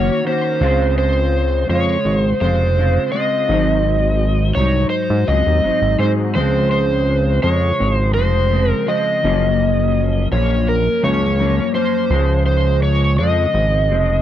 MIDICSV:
0, 0, Header, 1, 4, 480
1, 0, Start_track
1, 0, Key_signature, -5, "major"
1, 0, Tempo, 717703
1, 413, Time_signature, 4, 2, 24, 8
1, 9510, End_track
2, 0, Start_track
2, 0, Title_t, "Electric slide guitar"
2, 0, Program_c, 0, 29
2, 0, Note_on_c, 0, 73, 90
2, 178, Note_off_c, 0, 73, 0
2, 181, Note_on_c, 0, 72, 108
2, 649, Note_off_c, 0, 72, 0
2, 657, Note_on_c, 0, 72, 98
2, 1135, Note_off_c, 0, 72, 0
2, 1138, Note_on_c, 0, 73, 102
2, 1479, Note_off_c, 0, 73, 0
2, 1479, Note_on_c, 0, 72, 102
2, 1614, Note_off_c, 0, 72, 0
2, 1614, Note_on_c, 0, 72, 108
2, 2067, Note_off_c, 0, 72, 0
2, 2086, Note_on_c, 0, 75, 100
2, 3024, Note_off_c, 0, 75, 0
2, 3042, Note_on_c, 0, 73, 92
2, 3272, Note_off_c, 0, 73, 0
2, 3275, Note_on_c, 0, 72, 99
2, 3529, Note_on_c, 0, 75, 113
2, 3532, Note_off_c, 0, 72, 0
2, 3985, Note_off_c, 0, 75, 0
2, 4012, Note_on_c, 0, 72, 90
2, 4078, Note_off_c, 0, 72, 0
2, 4248, Note_on_c, 0, 72, 97
2, 4474, Note_off_c, 0, 72, 0
2, 4491, Note_on_c, 0, 72, 91
2, 4966, Note_off_c, 0, 72, 0
2, 4969, Note_on_c, 0, 73, 95
2, 5317, Note_off_c, 0, 73, 0
2, 5317, Note_on_c, 0, 72, 95
2, 5442, Note_off_c, 0, 72, 0
2, 5445, Note_on_c, 0, 72, 100
2, 5812, Note_off_c, 0, 72, 0
2, 5812, Note_on_c, 0, 70, 100
2, 5941, Note_on_c, 0, 75, 100
2, 5944, Note_off_c, 0, 70, 0
2, 6871, Note_off_c, 0, 75, 0
2, 6904, Note_on_c, 0, 73, 85
2, 7146, Note_on_c, 0, 70, 99
2, 7147, Note_off_c, 0, 73, 0
2, 7364, Note_off_c, 0, 70, 0
2, 7383, Note_on_c, 0, 73, 105
2, 7854, Note_off_c, 0, 73, 0
2, 7857, Note_on_c, 0, 72, 96
2, 8327, Note_off_c, 0, 72, 0
2, 8335, Note_on_c, 0, 72, 87
2, 8576, Note_off_c, 0, 72, 0
2, 8579, Note_on_c, 0, 73, 107
2, 8818, Note_off_c, 0, 73, 0
2, 8821, Note_on_c, 0, 75, 103
2, 9510, Note_off_c, 0, 75, 0
2, 9510, End_track
3, 0, Start_track
3, 0, Title_t, "Clean electric guitar"
3, 0, Program_c, 1, 27
3, 0, Note_on_c, 1, 51, 65
3, 0, Note_on_c, 1, 58, 67
3, 0, Note_on_c, 1, 61, 67
3, 0, Note_on_c, 1, 66, 77
3, 153, Note_off_c, 1, 51, 0
3, 160, Note_off_c, 1, 58, 0
3, 161, Note_on_c, 1, 51, 63
3, 167, Note_off_c, 1, 61, 0
3, 168, Note_on_c, 1, 58, 60
3, 175, Note_on_c, 1, 61, 66
3, 177, Note_off_c, 1, 66, 0
3, 186, Note_on_c, 1, 66, 66
3, 405, Note_off_c, 1, 58, 0
3, 405, Note_on_c, 1, 49, 95
3, 407, Note_off_c, 1, 51, 0
3, 408, Note_on_c, 1, 56, 90
3, 414, Note_off_c, 1, 61, 0
3, 415, Note_off_c, 1, 66, 0
3, 417, Note_on_c, 1, 60, 97
3, 418, Note_on_c, 1, 65, 108
3, 1119, Note_off_c, 1, 49, 0
3, 1127, Note_on_c, 1, 49, 63
3, 1131, Note_off_c, 1, 56, 0
3, 1133, Note_on_c, 1, 56, 72
3, 1136, Note_off_c, 1, 65, 0
3, 1147, Note_off_c, 1, 60, 0
3, 1156, Note_on_c, 1, 65, 71
3, 1597, Note_off_c, 1, 49, 0
3, 1605, Note_on_c, 1, 49, 57
3, 1611, Note_off_c, 1, 56, 0
3, 1614, Note_on_c, 1, 56, 63
3, 1623, Note_off_c, 1, 65, 0
3, 1624, Note_on_c, 1, 60, 64
3, 1631, Note_on_c, 1, 65, 73
3, 1844, Note_off_c, 1, 49, 0
3, 1851, Note_off_c, 1, 56, 0
3, 1852, Note_on_c, 1, 49, 66
3, 1857, Note_off_c, 1, 60, 0
3, 1859, Note_on_c, 1, 56, 69
3, 1862, Note_off_c, 1, 65, 0
3, 1865, Note_on_c, 1, 60, 63
3, 1873, Note_on_c, 1, 65, 76
3, 2077, Note_off_c, 1, 49, 0
3, 2085, Note_on_c, 1, 49, 63
3, 2092, Note_off_c, 1, 56, 0
3, 2095, Note_off_c, 1, 60, 0
3, 2100, Note_off_c, 1, 65, 0
3, 2100, Note_on_c, 1, 56, 67
3, 2103, Note_on_c, 1, 60, 67
3, 2108, Note_on_c, 1, 65, 78
3, 2329, Note_off_c, 1, 49, 0
3, 2334, Note_on_c, 1, 44, 82
3, 2337, Note_off_c, 1, 56, 0
3, 2339, Note_off_c, 1, 60, 0
3, 2341, Note_off_c, 1, 65, 0
3, 2345, Note_on_c, 1, 54, 92
3, 2351, Note_on_c, 1, 60, 101
3, 2351, Note_on_c, 1, 63, 94
3, 3043, Note_off_c, 1, 44, 0
3, 3048, Note_off_c, 1, 54, 0
3, 3051, Note_on_c, 1, 44, 63
3, 3056, Note_on_c, 1, 54, 72
3, 3063, Note_off_c, 1, 63, 0
3, 3074, Note_on_c, 1, 63, 75
3, 3076, Note_off_c, 1, 60, 0
3, 3528, Note_off_c, 1, 44, 0
3, 3535, Note_off_c, 1, 54, 0
3, 3536, Note_on_c, 1, 44, 59
3, 3544, Note_off_c, 1, 63, 0
3, 3546, Note_on_c, 1, 54, 69
3, 3554, Note_on_c, 1, 60, 61
3, 3558, Note_on_c, 1, 63, 71
3, 3751, Note_off_c, 1, 44, 0
3, 3759, Note_on_c, 1, 44, 62
3, 3764, Note_off_c, 1, 54, 0
3, 3768, Note_off_c, 1, 60, 0
3, 3772, Note_on_c, 1, 54, 66
3, 3776, Note_off_c, 1, 63, 0
3, 3776, Note_on_c, 1, 60, 70
3, 3784, Note_on_c, 1, 63, 74
3, 3991, Note_off_c, 1, 44, 0
3, 3999, Note_on_c, 1, 44, 57
3, 4006, Note_off_c, 1, 54, 0
3, 4011, Note_off_c, 1, 60, 0
3, 4014, Note_on_c, 1, 54, 66
3, 4019, Note_on_c, 1, 60, 68
3, 4020, Note_off_c, 1, 63, 0
3, 4030, Note_on_c, 1, 63, 71
3, 4243, Note_on_c, 1, 49, 89
3, 4247, Note_off_c, 1, 44, 0
3, 4250, Note_off_c, 1, 54, 0
3, 4251, Note_off_c, 1, 60, 0
3, 4253, Note_on_c, 1, 53, 88
3, 4253, Note_on_c, 1, 56, 91
3, 4258, Note_off_c, 1, 63, 0
3, 4261, Note_on_c, 1, 60, 104
3, 4962, Note_off_c, 1, 49, 0
3, 4969, Note_off_c, 1, 53, 0
3, 4970, Note_on_c, 1, 49, 60
3, 4972, Note_on_c, 1, 53, 64
3, 4974, Note_off_c, 1, 56, 0
3, 4978, Note_off_c, 1, 60, 0
3, 4981, Note_on_c, 1, 56, 67
3, 5435, Note_off_c, 1, 49, 0
3, 5443, Note_on_c, 1, 49, 56
3, 5449, Note_off_c, 1, 53, 0
3, 5451, Note_on_c, 1, 53, 67
3, 5456, Note_off_c, 1, 56, 0
3, 5464, Note_on_c, 1, 56, 64
3, 5467, Note_on_c, 1, 60, 65
3, 5677, Note_off_c, 1, 49, 0
3, 5685, Note_on_c, 1, 49, 70
3, 5692, Note_off_c, 1, 53, 0
3, 5696, Note_off_c, 1, 56, 0
3, 5700, Note_on_c, 1, 53, 67
3, 5701, Note_off_c, 1, 60, 0
3, 5704, Note_on_c, 1, 56, 75
3, 5711, Note_on_c, 1, 60, 72
3, 5916, Note_off_c, 1, 49, 0
3, 5924, Note_on_c, 1, 49, 58
3, 5927, Note_off_c, 1, 53, 0
3, 5935, Note_off_c, 1, 56, 0
3, 5935, Note_on_c, 1, 53, 64
3, 5941, Note_off_c, 1, 60, 0
3, 5943, Note_on_c, 1, 56, 63
3, 5949, Note_on_c, 1, 60, 73
3, 6170, Note_off_c, 1, 49, 0
3, 6170, Note_off_c, 1, 53, 0
3, 6171, Note_on_c, 1, 42, 91
3, 6177, Note_off_c, 1, 56, 0
3, 6178, Note_on_c, 1, 53, 97
3, 6180, Note_on_c, 1, 58, 92
3, 6182, Note_off_c, 1, 60, 0
3, 6187, Note_on_c, 1, 61, 104
3, 6888, Note_off_c, 1, 42, 0
3, 6896, Note_on_c, 1, 42, 65
3, 6898, Note_off_c, 1, 58, 0
3, 6903, Note_off_c, 1, 53, 0
3, 6905, Note_on_c, 1, 53, 66
3, 6913, Note_on_c, 1, 58, 65
3, 6916, Note_off_c, 1, 61, 0
3, 6918, Note_on_c, 1, 61, 74
3, 7360, Note_off_c, 1, 42, 0
3, 7368, Note_on_c, 1, 42, 65
3, 7376, Note_off_c, 1, 58, 0
3, 7377, Note_off_c, 1, 53, 0
3, 7380, Note_on_c, 1, 53, 64
3, 7384, Note_on_c, 1, 58, 64
3, 7393, Note_off_c, 1, 61, 0
3, 7395, Note_on_c, 1, 61, 64
3, 7602, Note_off_c, 1, 42, 0
3, 7610, Note_on_c, 1, 42, 69
3, 7612, Note_off_c, 1, 53, 0
3, 7618, Note_off_c, 1, 58, 0
3, 7620, Note_on_c, 1, 53, 71
3, 7625, Note_off_c, 1, 61, 0
3, 7626, Note_on_c, 1, 58, 72
3, 7637, Note_on_c, 1, 61, 77
3, 7832, Note_off_c, 1, 42, 0
3, 7840, Note_on_c, 1, 42, 66
3, 7846, Note_off_c, 1, 53, 0
3, 7847, Note_off_c, 1, 58, 0
3, 7854, Note_on_c, 1, 53, 67
3, 7855, Note_on_c, 1, 58, 71
3, 7859, Note_off_c, 1, 61, 0
3, 7867, Note_on_c, 1, 61, 74
3, 8087, Note_off_c, 1, 42, 0
3, 8092, Note_off_c, 1, 53, 0
3, 8095, Note_off_c, 1, 58, 0
3, 8097, Note_on_c, 1, 49, 87
3, 8100, Note_on_c, 1, 53, 103
3, 8101, Note_off_c, 1, 61, 0
3, 8105, Note_on_c, 1, 56, 99
3, 8799, Note_off_c, 1, 49, 0
3, 8807, Note_off_c, 1, 53, 0
3, 8807, Note_on_c, 1, 49, 69
3, 8815, Note_on_c, 1, 53, 59
3, 8820, Note_off_c, 1, 56, 0
3, 8823, Note_on_c, 1, 56, 62
3, 8832, Note_on_c, 1, 60, 67
3, 9279, Note_off_c, 1, 49, 0
3, 9287, Note_on_c, 1, 49, 61
3, 9292, Note_off_c, 1, 53, 0
3, 9300, Note_off_c, 1, 56, 0
3, 9300, Note_on_c, 1, 53, 66
3, 9303, Note_on_c, 1, 56, 63
3, 9307, Note_off_c, 1, 60, 0
3, 9310, Note_on_c, 1, 60, 70
3, 9510, Note_off_c, 1, 49, 0
3, 9510, Note_off_c, 1, 53, 0
3, 9510, Note_off_c, 1, 56, 0
3, 9510, Note_off_c, 1, 60, 0
3, 9510, End_track
4, 0, Start_track
4, 0, Title_t, "Analog synth bass"
4, 0, Program_c, 2, 38
4, 0, Note_on_c, 2, 30, 92
4, 71, Note_off_c, 2, 30, 0
4, 408, Note_on_c, 2, 37, 125
4, 1104, Note_off_c, 2, 37, 0
4, 1131, Note_on_c, 2, 41, 96
4, 1324, Note_off_c, 2, 41, 0
4, 1373, Note_on_c, 2, 32, 102
4, 1565, Note_off_c, 2, 32, 0
4, 1614, Note_on_c, 2, 29, 100
4, 1998, Note_off_c, 2, 29, 0
4, 2335, Note_on_c, 2, 32, 114
4, 3028, Note_off_c, 2, 32, 0
4, 3053, Note_on_c, 2, 36, 89
4, 3246, Note_off_c, 2, 36, 0
4, 3411, Note_on_c, 2, 44, 98
4, 3509, Note_off_c, 2, 44, 0
4, 3534, Note_on_c, 2, 37, 99
4, 3630, Note_off_c, 2, 37, 0
4, 3655, Note_on_c, 2, 39, 95
4, 3751, Note_off_c, 2, 39, 0
4, 3774, Note_on_c, 2, 32, 47
4, 3823, Note_off_c, 2, 32, 0
4, 3892, Note_on_c, 2, 32, 86
4, 3989, Note_off_c, 2, 32, 0
4, 4006, Note_on_c, 2, 44, 100
4, 4253, Note_on_c, 2, 37, 113
4, 4263, Note_off_c, 2, 44, 0
4, 4947, Note_off_c, 2, 37, 0
4, 4974, Note_on_c, 2, 41, 97
4, 5167, Note_off_c, 2, 41, 0
4, 5219, Note_on_c, 2, 32, 107
4, 5462, Note_on_c, 2, 29, 94
4, 5472, Note_off_c, 2, 32, 0
4, 5843, Note_off_c, 2, 29, 0
4, 6182, Note_on_c, 2, 30, 119
4, 6872, Note_off_c, 2, 30, 0
4, 6900, Note_on_c, 2, 34, 100
4, 7282, Note_off_c, 2, 34, 0
4, 7381, Note_on_c, 2, 37, 107
4, 7762, Note_off_c, 2, 37, 0
4, 8095, Note_on_c, 2, 37, 107
4, 8815, Note_on_c, 2, 41, 94
4, 8825, Note_off_c, 2, 37, 0
4, 9007, Note_off_c, 2, 41, 0
4, 9057, Note_on_c, 2, 32, 104
4, 9294, Note_on_c, 2, 29, 96
4, 9304, Note_off_c, 2, 32, 0
4, 9510, Note_off_c, 2, 29, 0
4, 9510, End_track
0, 0, End_of_file